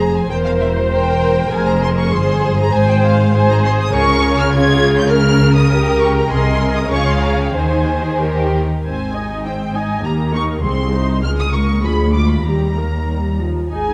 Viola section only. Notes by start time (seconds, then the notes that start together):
Already playing: G#4
0.31 C5
1.52 A#4
2.12 G#4
2.72 C5
3.34 C5
3.94 A#4
4.54 G#4
5.12 A#4
6.91 C#5
7.55 C5
8.85 C4 C5
9.15 D#4 D#5
9.46 C4 C5
9.75 D#4 D#5
10.03 A#3 G4
10.33 D#4 A#4
10.63 C4 G#4
10.93 D#4 C5
11.23 G#3 G#4
11.53 A#3 A#4
11.84 F3 G#4
12.14 G#3 F4
12.47 G3 G4
12.77 A#3 A#4
13.09 G3
13.41 F3
13.72 D#4 G#4